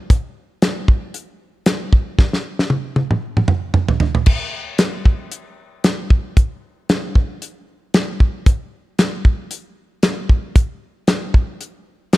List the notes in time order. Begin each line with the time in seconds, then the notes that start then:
0.10 kick, closed hi-hat
0.62 snare, closed hi-hat
0.88 kick
1.14 closed hi-hat
1.66 snare, closed hi-hat
1.93 kick
2.19 kick, snare
2.33 snare
2.59 snare
2.70 high tom
2.96 high tom
3.11 mid tom
3.37 mid tom
3.48 mid tom
3.74 mid tom
3.88 floor tom
4.00 floor tom
4.15 floor tom
4.26 kick, crash
4.78 snare, closed hi-hat
5.05 kick
5.32 closed hi-hat
5.84 snare, closed hi-hat
6.10 kick
6.37 kick, closed hi-hat
6.89 snare, closed hi-hat
7.15 kick
7.42 closed hi-hat
7.94 snare, closed hi-hat
8.20 kick
8.46 kick, closed hi-hat
8.99 snare, closed hi-hat
9.25 kick
9.51 closed hi-hat
10.03 snare, closed hi-hat
10.29 kick
10.56 kick, closed hi-hat
11.07 snare, closed hi-hat
11.34 kick
11.61 closed hi-hat
12.13 snare, closed hi-hat